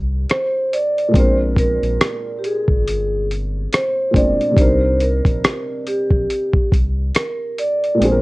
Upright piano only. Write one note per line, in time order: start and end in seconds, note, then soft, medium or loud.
0.00 1.07 C3 medium
0.00 1.08 G3 medium
0.00 1.10 D4 medium
0.00 1.11 D#4 medium
0.00 1.12 A#4 medium
1.08 4.07 A#2 medium
1.08 4.08 G#3 medium
1.14 4.10 C4 medium
1.14 4.11 D4 medium
1.19 4.12 A#4 medium
4.11 4.55 A#2 soft
4.11 4.56 G#3 soft
4.11 4.57 C4 soft
4.15 4.55 D4 soft
4.15 4.58 C5 medium
4.51 7.93 C3 medium
4.51 7.94 G3 medium
4.56 7.95 D4 medium
4.56 7.97 D#4 medium
4.61 7.98 A#4 medium
7.95 8.22 A#2 medium
7.95 8.22 G#3 medium
8.00 8.22 C4 medium
8.00 8.22 D4 medium
8.05 8.10 G#4 medium
8.11 8.22 A#4 medium